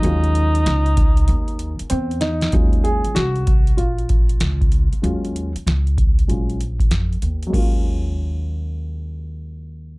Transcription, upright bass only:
X:1
M:4/4
L:1/16
Q:"Swing 16ths" 1/4=96
K:Ebdor
V:1 name="Upright bass" clef=bass
E,,4 D,,4 E,,3 z _F,,4 | E,,3 z C,,4 B,,,4 D,,3 z | E,,3 z D,,4 B,,,4 F,,2 E,,2 | E,,16 |]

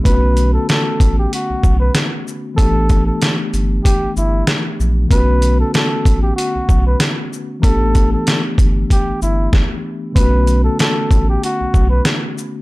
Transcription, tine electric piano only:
X:1
M:4/4
L:1/8
Q:"Swing 16ths" 1/4=95
K:Bm
V:1 name="Tine electric piano"
[D,A,B,CF]8 | [E,A,B,DG]8 | [D,A,B,CF]8 | [E,A,B,DG]8 |
[D,A,B,CF]8 |]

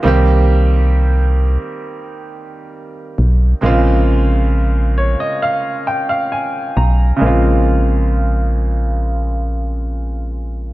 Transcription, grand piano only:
X:1
M:4/4
L:1/16
Q:1/4=67
K:Bbdor
V:1 name="Grand piano"
z16 | z6 d e f2 g f a2 b2 | z16 |]
V:2 name="Grand piano"
[E,G,B,CG]16 | [C,D,A,B,CF]16 | [D,A,B,CF]16 |]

